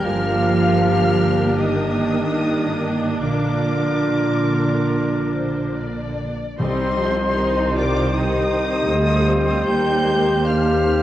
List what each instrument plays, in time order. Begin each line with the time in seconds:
Already playing: oboe A#4, violin section A#4
0.04 double bass section G1, cello section F3, viola section A#3 D4, french horn section F4, clarinet G4, violin section G4 F6, flute F5
1.58 french horn section D#3, cello section D#3, flute D#5, violin section D#6
3.20 double bass section A#1, cello section D3, french horn section D4, clarinet F4, violin section F4 A#4 D6, oboe A#4, flute D5
4.08 violin section A#4
5.35 violin section C5
5.76 violin section D5
6.58 double bass section C2, cello section C2, timpani C3, viola section G3 C4, violin section D#4 D#5 C6, clarinet G4, french horn section G4 C5, oboe C5, flute C5
6.99 viola section F3
7.38 viola section D#3 D#4, violin section C5
7.75 viola section F4, flute D5, violin section D6
8.14 violin section C4 C5 D#6, viola section D#4, flute D#5
8.53 violin section C4
8.90 cello section D2, double bass section D2, viola section D3 G3, violin section F4 A#4
9.28 viola section C4
9.67 cello section D#2, double bass section D#2, viola section G3 A#3, violin section D#4 A#4 G6, flute G5
10.06 viola section G#3
10.45 viola section A#3, violin section D4 G4 F6, flute F5
10.84 violin section C4